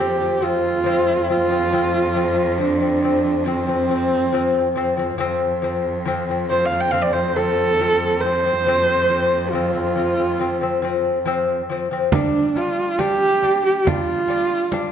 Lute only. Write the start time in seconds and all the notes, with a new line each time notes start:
0.00 F3 C4
0.20 F3 C4
0.41 F3 C4
0.84 F3 C4
1.29 F3 C4
1.50 F3 C4
1.72 F3 C4
2.15 F3 C4
2.59 F3 C4
2.80 F3 C4
3.02 F3 C4
3.25 F3 C4
3.46 F3 C4
3.67 F3 C4
3.89 F3 C4
4.32 F3 C4
4.75 F3 C4
4.97 F3 C4
5.18 F3 C4
5.62 F3 C4
6.05 F3 C4
6.29 F3 C4
6.50 F3 C4
6.71 F3 C4
6.92 F3 C4
7.14 F3 C4
7.36 F3 C4
7.80 F3 C4
8.24 F3 C4
8.44 F3 C4
8.67 F3 C4
9.09 F3 C4
9.53 F3 C4
9.73 F3 C4
9.95 F3 C4
10.17 F3 C4
10.39 F3 C4
10.61 F3 C4
10.82 F3 C4
11.26 F3 C4
11.70 F3 C4
11.91 F3 C4
12.12 G3 D4
12.56 G3 D4
12.98 G3 D4
13.42 G3 D4
13.85 G3 D4
14.28 G3 D4
14.71 G3 D4